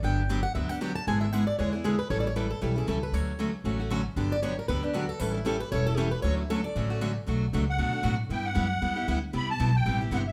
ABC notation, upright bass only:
X:1
M:4/4
L:1/8
Q:"Swing" 1/4=232
K:D
V:1 name="Upright bass" clef=bass
G,,,4 D,,4 | ^G,,,4 E,,4 | A,,,4 B,,,2 C,,2 | D,,4 A,,,4 |
G,,,4 D,,4 | A,,,4 E,,,4 | D,,4 A,,,4 | [K:Bm] B,,,2 C,,2 D,,2 A,,2 |
G,,2 F,,2 E,,2 D,,2 | =C,,2 B,,,2 A,,,2 G,,,2 |]